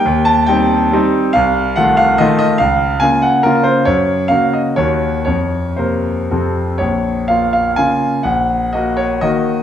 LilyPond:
<<
  \new Staff \with { instrumentName = "Grand piano" } { \time 3/4 \key c \dorian \tempo 4 = 131 g''8 a''8 g''4 r4 | \key bes \minor f''4 ges''8 f''8 ees''8 ees''8 | f''4 aes''8 ges''8 bes'8 c''8 | des''4 f''8 ees''8 des''4 |
des''4 c''4. r8 | des''4 f''8 f''8 aes''4 | ges''4 ees''8 des''8 ees''4 | }
  \new Staff \with { instrumentName = "Grand piano" } { \time 3/4 \key c \dorian ees,4 <g c' ees'>4 <g c' ees'>4 | \key bes \minor c,4 <ees a f'>4 <ees a f'>4 | des,4 <des bes f'>4 <des bes f'>4 | ges,4 <des bes ges'>4 <ees, ees bes ges'>4 |
f,4 <c bes bes'>4 <f, c c' a'>4 | bes,,4 <bes f'>4 <des bes f'>4 | bes,,4 <bes ges'>4 <ees bes ges'>4 | }
>>